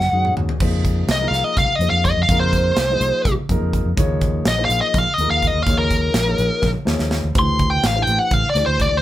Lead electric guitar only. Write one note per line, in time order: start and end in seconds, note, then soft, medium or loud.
0.00 0.34 F#5 medium
1.12 1.28 D#5 medium
1.28 1.44 F5 medium
1.44 1.58 D#5 medium
1.58 1.75 F5 medium
1.75 1.90 D#5 medium
1.90 2.05 F5 medium
2.05 2.21 D#5 medium
2.23 2.37 F5 medium
2.40 3.32 C5 medium
4.48 4.63 D#5 medium
4.65 4.79 F5 medium
4.81 4.98 D#5 medium
4.98 5.14 F5 medium
5.14 5.28 D#5 medium
5.31 5.47 F5 medium
5.47 5.63 D#5 medium
5.63 5.76 F5 medium
5.78 6.70 A#4 medium
7.39 7.68 C6 loud
7.70 7.84 G5 medium
7.86 8.02 F5 medium
8.02 8.19 G5 medium
8.19 8.34 F#5 medium
8.34 8.48 F5 loud
8.50 8.64 D5 medium
8.66 8.80 C5 loud
8.81 8.96 D5 medium
8.97 9.02 C5 medium